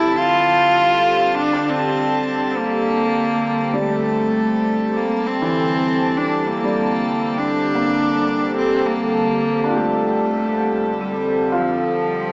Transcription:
Already playing: F2 D3 G3 C4 E4 G4 A4 D5 A5 A6
0.18 F4
1.38 D4
1.53 D4
1.69 C4
2.58 A#3
3.73 G3 A3
4.97 A#3
5.26 C4
5.42 E3
6.17 D4
6.47 A#3
6.64 G3
7.37 D4
7.75 A#3
8.57 F2 C4
8.86 A#3
9.64 D4
9.69 F4
9.74 A3 G4
10.97 G3
11.52 F4
11.57 F3

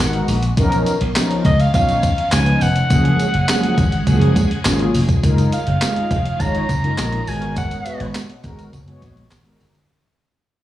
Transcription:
Already playing: B2 G#3 F#4 F#5
0.00 G#1 G#3 B3 D#4 F#4 A#4
0.13 closed hi-hat
0.28 A#1, open hi-hat, tambourine
0.42 closed hi-hat, tambourine
0.57 B1 D#3 F3 B3 C#4 D#4 F4 A#4, kick, closed hi-hat, tambourine
0.72 closed hi-hat, tambourine
0.86 closed hi-hat, tambourine
1.01 B1, closed hi-hat
1.15 F3 B3 C#4 D#4 A#4, snare, clap, closed hi-hat, tambourine
1.31 closed hi-hat
1.45 C#2 D#5, kick, closed hi-hat, tambourine
1.60 F5, closed hi-hat, tambourine
1.74 B1 F3 B3 C#4 D#4 C#5 F5, kick, closed hi-hat, tambourine
1.88 closed hi-hat, tambourine
2.03 kick, closed hi-hat, tambourine
2.18 closed hi-hat
2.32 C#2 F3 B3 C#4 D#4 B4 G#5, snare, clap, closed hi-hat, tambourine
2.46 closed hi-hat
2.61 F1 F#5, open hi-hat, tambourine
2.75 closed hi-hat, tambourine
2.90 F#1 C#3 F3 F#3 G#3 A#3 C#4 G#4, kick, closed hi-hat, tambourine
3.05 closed hi-hat
3.20 closed hi-hat, tambourine
3.34 F#1, closed hi-hat
3.48 F3 F#3 A#3 C#4 G#4, snare, clap, closed hi-hat, tambourine
3.63 closed hi-hat
3.78 G#1, kick, closed hi-hat, tambourine
3.92 closed hi-hat
4.06 F#1 F3 F#3 A#3 C#4 G#4, kick, closed hi-hat, tambourine
4.21 closed hi-hat
4.36 kick, closed hi-hat, tambourine
4.51 closed hi-hat
4.65 G#1 F#3 A#3 C#4 F4 G#4, snare, clap, closed hi-hat, tambourine
4.79 closed hi-hat
4.94 F1, open hi-hat, tambourine
5.09 kick, closed hi-hat, tambourine
5.23 F#1 D#3 G#3 C#4 D#4 F4 A#4, kick, closed hi-hat, tambourine
5.38 closed hi-hat, tambourine
5.52 F5, closed hi-hat, tambourine
5.67 F#1, closed hi-hat
5.81 G#3 D#4 F4 G#4, snare, clap, closed hi-hat, tambourine
5.96 closed hi-hat
6.11 F1, kick, closed hi-hat, tambourine
6.26 closed hi-hat
6.40 G#1 G#3 D#4 F4 C#5 A#5, kick, closed hi-hat, tambourine
6.55 closed hi-hat
6.69 F#1, kick, closed hi-hat, tambourine
6.83 G#3 D#4 F4 A#4, closed hi-hat
6.98 A#1, snare, clap, closed hi-hat, tambourine
7.12 closed hi-hat
7.27 G#1 B2 G#3 B3 F#4 A#4 G#5, open hi-hat, tambourine
7.42 closed hi-hat
7.56 F#5, kick, closed hi-hat, tambourine
7.71 closed hi-hat, tambourine
7.85 G#3 B3 F#4 B4, closed hi-hat, tambourine
8.00 G#1, closed hi-hat
8.15 snare, clap, closed hi-hat, tambourine
8.30 closed hi-hat
8.43 G#1 G#3 B3 F#4 A#4, kick, closed hi-hat, tambourine
8.59 closed hi-hat, tambourine
8.73 F#1, kick, closed hi-hat, tambourine
8.87 G#3 B3 F#4 C#5, closed hi-hat
9.02 A#1, kick, closed hi-hat, tambourine
9.17 closed hi-hat
9.31 G#1, snare, clap, closed hi-hat, tambourine
9.45 G#3 B3 F#4 A#4, closed hi-hat
9.60 G1, open hi-hat, tambourine
9.74 closed hi-hat, tambourine

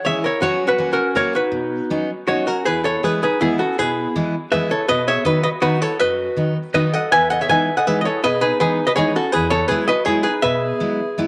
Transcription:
0.05 E3 G#3 C#4 E4 G#4 C#5 E5
0.24 E4 A#4 C#5
0.42 F#3 B3 C#4 F#4 C#5
0.67 F#4 B4
0.78 F#3 A#3 C#4 F#4
0.93 C#4 F#4 A#4
1.15 F#3 A#3 C#4 F#4 A#4 C#5
1.35 D#4 F#4 B4
1.52 B2
1.90 F#3 B3 C#4 D#4
2.27 F#3 B3 C#4 D#4 F#4 C#5
2.47 C#4 F#4 A#4
2.65 E2 E4 G#4 B4
2.84 E4 A4 C#5
3.03 E3 G#3 B3 E4 G#4 B4
3.23 D#4 G#4 B4
3.41 E3 G#3 B3 E4 G#4
3.59 C#4 F#4 A4
3.79 B2 E4 G#4 B4
4.16 E3 G#3 B3 E4
4.51 E3 G#3 B3 E4 G#4 B4 E5
4.71 E4 A4 C#5
4.88 B2 F#4 B4 D#5
5.06 G#4 C#5 E5
5.25 D#3 F#3 B3 D#4 F#4 B4 D#5
5.43 F#4 B4 D#5
5.61 D#3 F#3 B3 D#4 F#4 B4
5.80 E4 A4 C#5
5.99 F#2 F#4 B4 D#5
6.37 D#3 F#3 B3 D#4
6.74 D#3 F#3 B3 D#4 F#4 B4 D#5
6.93 A4 D#5 F#5
7.11 E2 B4 E5 G#5
7.30 A4 D#5 F#5
7.41 G#4 C#5 E5
7.49 E3 G#3 B3 D#4 B4 E5 G#5
7.77 A4 D#5 F#5
7.87 E3 G#3 B3 D#4 G#4 B4 E5
8.01 F#4 D#5
8.05 E4 A4 C#5
8.24 B2 G#4 B4 D#5
8.41 D#4 G#4 B4
8.60 E3 G#3 B3 D#4 G#4 B4
8.87 F#4 B4 D#5
8.96 E3 G#3 B3 D#4 E4 G#4 C#5
9.16 C#4 F#4 A4
9.32 E2 E4 G#4 B4
9.50 E4 A4 C#5
9.68 F#3 G#3 B3 E4 G#4 B4
9.88 F#4 B4 D#5
10.05 F#3 G#3 B3 E4 G#4 C#5
10.23 D#4 G#4 B4
10.42 B2 G#4 B4 E5
10.80 F#3 G#3 B3 E4
11.18 F#3 G#3 B3 E4

